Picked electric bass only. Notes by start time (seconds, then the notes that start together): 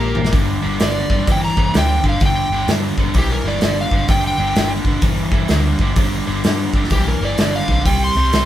Already playing: A#1
0.33 G1
0.64 G1
0.81 G1
1.10 G1
1.28 G1
1.57 G1
1.75 D2
2.04 G1
2.21 G1
2.50 G1
2.68 G2
2.98 G1
3.15 B1
3.44 G1
3.62 G1
3.92 G1
4.09 G1
4.38 G1
4.56 G1
4.85 G1
5.03 G1
5.32 G1
5.49 D2
5.78 G1
5.96 G1
6.27 G1
6.45 G2
6.74 G1
6.91 B1
7.21 G1
7.38 G1
7.68 B1
7.85 C2
8.15 C2
8.33 C2